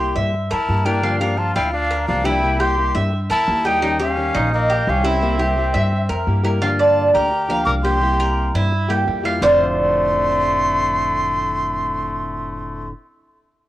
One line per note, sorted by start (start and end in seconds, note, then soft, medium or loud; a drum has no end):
0.00 0.10 C2 medium
0.00 0.32 G3 medium
0.00 0.33 A#3 medium
0.00 0.33 E4 medium
0.00 0.14 G4 medium
0.00 0.33 G4 medium
0.00 0.13 C6 medium
0.16 0.49 G2 medium
0.16 0.50 E5 medium
0.34 muted nylon-string guitar stroke medium
0.51 0.68 F2 medium
0.51 0.87 E4 medium
0.51 0.85 A#4 medium
0.51 0.87 A5 loud
0.68 1.50 G2 medium
0.68 0.85 G3 medium
0.68 0.85 A#3 medium
0.68 0.85 E4 medium
0.68 0.84 G4 medium
0.85 1.03 G3 medium
0.85 1.02 A#3 medium
0.85 1.21 D4 medium
0.85 1.03 E4 medium
0.85 1.02 G4 medium
0.85 1.03 A#4 medium
0.85 1.19 G5 medium
1.02 1.19 D3 medium
1.02 1.20 F3 medium
1.02 1.20 A#3 medium
1.02 1.20 D4 medium
1.02 1.20 F4 medium
1.02 1.19 G4 medium
1.20 1.37 F3 medium
1.20 1.37 A#3 medium
1.20 1.38 D4 medium
1.20 1.40 D4 medium
1.20 1.37 G4 medium
1.20 1.55 A#4 medium
1.20 1.39 F5 medium
1.37 1.72 F3 medium
1.37 1.72 A#3 medium
1.37 1.72 D4 medium
1.37 1.55 F4 medium
1.37 1.72 G4 medium
1.37 1.54 A5 medium
1.55 2.04 D2 loud
1.55 1.72 E4 medium
1.55 1.89 F4 medium
1.55 1.71 G5 medium
1.72 2.06 D4 medium
1.72 2.05 F5 loud
1.72 muted nylon-string guitar stroke medium
1.91 2.24 A#4 medium
2.07 2.90 C2 loud
2.07 2.25 F3 medium
2.07 2.24 A#3 medium
2.07 2.27 D4 medium
2.07 2.24 D4 medium
2.07 2.23 G4 medium
2.07 2.27 F5 loud
2.24 2.43 F3 medium
2.24 2.42 A#3 medium
2.24 2.42 D4 medium
2.24 2.59 E4 medium
2.24 2.62 E4 medium
2.24 2.42 G4 medium
2.24 2.61 G5 loud
2.42 2.59 C3 medium
2.42 2.60 G3 medium
2.42 2.60 A#3 medium
2.42 2.59 E4 medium
2.42 2.59 G4 medium
2.60 2.76 G3 medium
2.60 2.77 A#3 medium
2.60 2.77 E4 medium
2.60 2.77 G4 medium
2.60 2.94 G4 medium
2.60 2.95 G4 medium
2.60 2.95 C6 loud
2.78 3.12 A#3 medium
2.78 3.12 E4 medium
2.78 3.12 G4 medium
2.95 3.28 G2 loud
2.95 3.29 E5 medium
3.12 muted nylon-string guitar stroke medium
3.30 3.46 E2 medium
3.30 3.68 E4 loud
3.30 3.64 A#4 medium
3.30 3.68 A5 loud
3.47 4.29 D#2 loud
3.47 3.64 G3 medium
3.47 3.64 A#3 medium
3.47 3.65 E4 medium
3.47 3.64 G4 medium
3.65 3.82 G3 medium
3.65 3.82 A#3 medium
3.65 4.01 D#4 loud
3.65 3.82 E4 medium
3.65 3.82 G4 medium
3.65 4.01 G5 loud
3.82 3.99 D#3 medium
3.82 4.00 G3 medium
3.82 4.00 C#4 medium
3.82 3.99 D#4 medium
3.82 3.99 G4 medium
3.99 4.17 G3 medium
3.99 4.17 C#4 medium
3.99 4.49 C#4 medium
3.99 4.34 G4 medium
3.99 4.17 G4 medium
3.99 4.49 F5 loud
4.17 4.51 D#3 medium
4.17 4.51 G3 medium
4.17 4.51 C#4 medium
4.17 4.52 G4 medium
4.35 4.84 A#1 medium
4.35 4.69 D#4 medium
4.52 4.91 A#3 medium
4.52 4.91 D#5 loud
4.52 muted nylon-string guitar stroke medium
4.70 5.04 G4 medium
4.87 5.69 C2 loud
4.87 5.04 D#3 medium
4.87 5.04 G3 medium
4.87 5.04 C#4 medium
4.87 5.08 C#4 medium
4.87 5.03 G4 medium
4.87 5.07 F5 medium
5.04 5.21 G3 medium
5.04 6.28 C4 medium
5.04 5.22 C#4 medium
5.04 5.39 E4 medium
5.04 5.21 G4 medium
5.04 6.28 E5 medium
5.22 5.39 C3 medium
5.22 5.39 G3 medium
5.22 5.39 A#3 medium
5.22 5.38 E4 medium
5.22 5.38 G4 medium
5.39 5.55 G3 medium
5.39 5.56 A#3 medium
5.39 5.56 E4 medium
5.39 5.56 G4 medium
5.39 5.73 G4 medium
5.57 5.91 G3 medium
5.57 5.91 A#3 medium
5.57 5.91 E4 medium
5.57 5.91 G4 medium
5.74 6.07 G2 medium
5.74 6.08 E5 medium
5.92 muted nylon-string guitar stroke medium
6.09 6.26 F2 medium
6.09 6.43 A#4 medium
6.27 7.09 G2 loud
6.27 6.44 G3 medium
6.27 6.43 A#3 medium
6.27 6.43 E4 medium
6.27 6.42 G4 medium
6.43 6.62 G3 medium
6.43 6.61 A#3 medium
6.43 6.61 E4 medium
6.43 6.61 G4 medium
6.43 6.62 A#4 medium
6.61 7.30 D3 medium
6.61 7.30 F3 medium
6.61 7.31 A#3 medium
6.61 7.31 D4 medium
6.61 6.79 F4 medium
6.61 7.32 G4 medium
6.79 7.12 F4 medium
6.79 7.13 D5 medium
6.79 7.12 A5 medium
7.14 7.63 D2 medium
7.14 7.63 G4 medium
7.14 7.49 A#4 medium
7.14 7.63 A#5 medium
7.31 muted nylon-string guitar stroke medium
7.49 7.65 F3 medium
7.49 7.66 A#3 medium
7.49 7.66 D4 medium
7.49 7.66 G4 medium
7.49 7.84 F5 medium
7.65 8.49 C2 loud
7.65 7.84 F3 medium
7.65 7.84 A#3 medium
7.65 7.83 D4 medium
7.65 7.83 G4 medium
7.65 7.74 A#4 medium
7.65 7.71 D6 loud
7.83 8.01 F3 medium
7.83 8.01 A#3 medium
7.83 8.01 D4 medium
7.83 8.50 G4 medium
7.83 8.01 G4 medium
7.83 8.19 G4 medium
7.83 8.50 C6 loud
8.00 8.70 C3 medium
8.00 8.71 G3 medium
8.00 8.71 A#3 medium
8.00 8.71 E4 medium
8.00 8.71 G4 medium
8.20 8.54 A#4 medium
8.54 9.04 G2 medium
8.54 8.89 E4 medium
8.71 muted nylon-string guitar stroke medium
8.88 9.05 G3 medium
8.88 9.05 A#3 medium
8.88 9.06 E4 medium
8.88 9.06 G4 medium
8.88 9.24 G4 medium
9.06 9.38 F2 loud
9.06 9.24 G3 soft
9.06 9.23 A#3 medium
9.06 9.23 E4 medium
9.06 9.22 G4 medium
9.23 9.41 G3 medium
9.23 9.42 A#3 medium
9.23 9.41 E4 medium
9.23 9.41 F4 medium
9.23 9.41 G4 medium
9.41 12.89 F1 loud
9.41 12.92 F2 medium
9.41 12.92 A2 medium
9.41 12.93 D3 medium
9.41 12.93 A3 medium
9.41 12.90 A3 medium
9.41 12.94 C4 medium
9.41 12.89 F4 medium
9.41 12.94 F4 medium
9.41 12.90 C5 medium
9.41 12.90 D5 loud
9.41 12.89 C6 loud